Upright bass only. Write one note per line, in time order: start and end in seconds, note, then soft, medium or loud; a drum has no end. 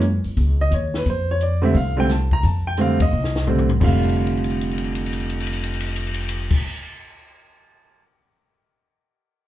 0.00 0.21 F#2 medium
0.25 muted upright bass stroke soft
0.37 0.69 C#2 medium
0.71 1.03 D#2 medium
1.06 1.71 F2 medium
1.75 2.40 C2 medium
2.43 3.09 F2 medium
3.13 3.78 C2 medium
3.81 6.52 F1 medium